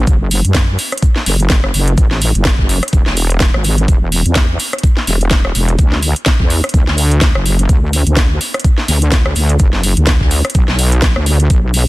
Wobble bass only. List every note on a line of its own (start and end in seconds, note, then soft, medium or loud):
0.07 0.42 F#1 loud
0.45 0.77 F#2 medium
1.26 1.72 F#1 medium
1.74 1.96 F#1 loud
1.98 2.33 A1 loud
2.35 2.81 F#1 medium
2.93 3.04 E1 loud
3.07 3.52 E1 loud
3.54 3.87 G#1 loud
3.88 4.23 E1 loud
4.26 4.58 E2 medium
5.07 5.53 E1 loud
5.55 5.77 E1 medium
5.79 6.14 D2 loud
6.40 6.62 E2 medium
6.74 6.85 D2 loud
6.87 7.33 D2 loud
7.35 7.68 F#1 loud
7.69 8.04 D2 loud
8.07 8.39 D2 loud
8.88 9.34 D2 loud
9.36 9.58 D2 loud
9.60 9.95 F#1 loud
9.97 10.43 D2 loud
10.55 10.66 B1 loud
10.68 11.14 B1 medium
11.16 11.49 D2 loud
11.50 11.85 B1 loud